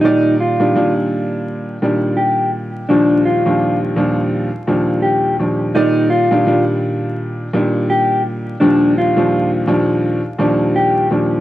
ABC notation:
X:1
M:4/4
L:1/16
Q:"Swing 16ths" 1/4=84
K:Eb
V:1 name="Clean electric guitar"
E2 F3 z6 z G2 z2 | D2 F3 z6 z G2 z2 | E2 F3 z6 z G2 z2 | D2 F3 z6 z G2 z2 |]
V:2 name="Grand piano" clef=bass
[B,,E,G,d]3 [B,,E,G,D] [B,,E,G,D]6 [B,,E,G,D]6 | [E,,B,,F,G,D]3 [E,,B,,F,G,D]3 [E,,B,,F,G,D]3 z [E,,B,,F,G,D]4 [E,,B,,F,G,D]2 | [B,,E,G,d]3 [B,,E,G,D] [B,,E,G,D]6 [B,,E,G,D]6 | [E,,B,,F,G,D]3 [E,,B,,F,G,D]3 [E,,B,,F,G,D]3 z [E,,B,,F,G,D]4 [E,,B,,F,G,D]2 |]